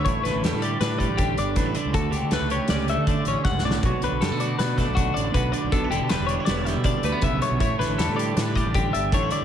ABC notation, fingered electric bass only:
X:1
M:5/4
L:1/16
Q:1/4=159
K:Amix
V:1 name="Fingered electric bass" clef=bass
A,,, z A,,, A,,, E,, A,,3 A,,3 A,,,3 G,,,2 A,,,2 z C,, | D,,2 C,, D, C,, C,,2 z C,,3 D,2 z A,,, z C,,2 B,,,2 | B,,, z B,,, B,,, F,, B,,3 B,,3 B,,,3 A,,,2 B,,,2 z B,,, | B,,,2 E,,, B,, E,,, E,,,2 z E,,,3 B,,2 z D,, z B,,,2 z B,,, |
A,,, z A,,, A,,, E,, A,,3 A,,3 A,,,3 G,,,2 A,,,2 z2 |]